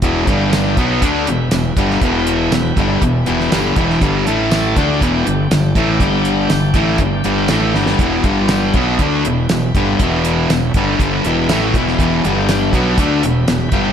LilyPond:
<<
  \new Staff \with { instrumentName = "Tonewheel organ" } { \time 4/4 \key e \minor \tempo 4 = 120 r8 <d' g' g''>4 <e' b' g''>2~ <e' b' g''>8~ | <e' b' g''>1 | r8 <e' a' a''>4 <d' g' g''>2~ <d' g' g''>8~ | <d' g' g''>1 |
r8 <d' g' g''>4 <e' b' g''>2~ <e' b' g''>8~ | <e' b' g''>1~ | <e' b' g''>8 <d' g' g''>4 <e' b' g''>2~ <e' b' g''>8 | }
  \new Staff \with { instrumentName = "Distorted electric guitar" } { \clef bass \time 4/4 \key e \minor <e, b, e>8 <g, d g>4 <b, fis b>8 <d a d'>8 <e, b,>8 <e, b,>8 <g, d g>8 | <e, b, e>4 <e, b,>8 <g, d g>8 <e, b,>8 <e, b, e>8 <g, d g>8 <e, b, e>8 | <g, d g>8 <a, e a>4 <d a d'>8 <e, b, e>8 <g, d>8 <g, d>8 <a, e a>8 | <g, d g>4 <g, d>8 <a, e a>8 <g, d>8 <g, d g>8 <a, e a>8 <g, d g>8 |
<e, b, e>8 <g, d g>4 <b, fis b>8 <d a d'>8 <e, b,>8 <e, b,>8 <g, d g>8 | <e, b, e>4 <e, b,>8 <g, d g>8 <g, d g>8 <e, b, e>8 <a, e a>8 <e, b, e>8 | <e, b, e>8 <g, d g>4 <b, fis b>8 <d a d'>8 <e, b,>8 <e, b,>8 <g, d g>8 | }
  \new Staff \with { instrumentName = "Overdriven electric guitar" } { \clef bass \time 4/4 \key e \minor <e, b, e>8 <g, d g>4 <b, fis b>8 <d a d'>8 <e, b,>8 <e, b,>8 <g, d g>8 | <e, b, e>4 <e, b,>8 <g, d g>8 <e, b,>8 <e, b, e>8 <g, d g>8 <e, b, e>8 | <g, d g>8 <a, e a>4 <d a d'>8 <e, b, e>8 <g, d>8 <g, d>8 <a, e a>8 | <g, d g>4 <g, d>8 <a, e a>8 <g, d>8 <g, d g>8 <a, e a>8 <g, d g>8 |
<e, b, e>8 <g, d g>4 <b, fis b>8 <d a d'>8 <e, b,>8 <e, b,>8 <g, d g>8 | <e, b, e>4 <e, b,>8 <g, d g>8 <g, d g>8 <e, b, e>8 <a, e a>8 <e, b, e>8 | <e, b, e>8 <g, d g>4 <b, fis b>8 <d a d'>8 <e, b,>8 <e, b,>8 <g, d g>8 | }
  \new Staff \with { instrumentName = "Fingered electric bass" } { \clef bass \time 4/4 \key e \minor e,,8 g,,4 b,,8 d,8 e,,8 e,,8 g,,8 | e,,4 e,,8 g,,8 e,,8 e,,8 g,,8 e,,8 | g,,8 a,,4 d,8 e,,8 g,,8 g,,8 a,,8 | g,,4 g,,8 a,,8 g,,8 g,,8 a,,8 g,,8 |
e,,8 g,,4 b,,8 d,8 e,,8 e,,8 g,,8 | e,,4 e,,8 g,,8 g,,8 e,,8 a,,8 e,,8 | e,,8 g,,4 b,,8 d,8 e,,8 e,,8 g,,8 | }
  \new DrumStaff \with { instrumentName = "Drums" } \drummode { \time 4/4 <hh bd>8 <hh bd>8 <hh sn tamb>8 <hh bd>8 <hh bd>8 hh8 <hh sn tamb>8 <hh bd>16 sn16 | <hh bd>8 hh8 <hh sn tamb>8 <hh bd>8 <hh bd>8 hh16 sn16 <hh sn tamb>8 <hh bd>16 sn16 | <hh bd>8 hh8 <hh sn tamb>8 <hh bd>8 <hh bd>8 hh8 <hh sn tamb>8 <hh bd>8 | <hh bd>8 hh8 <hh sn tamb>8 <hh bd>8 <hh bd>8 hh8 <hh sn tamb>8 sn16 sn16 |
<hh bd>8 <hh bd>8 <hh sn tamb>8 <hh bd>8 <hh bd>8 hh8 <hh sn tamb>8 <hh bd>8 | <hh bd>8 hh8 <hh sn tamb>8 <hh bd>8 <hh bd>8 hh8 <hh sn tamb>8 <hh bd>16 sn16 | <hh bd>8 hh8 <hh sn tamb>8 <hh bd>8 <hh bd>8 hh8 <hh sn tamb>8 <hh bd>8 | }
>>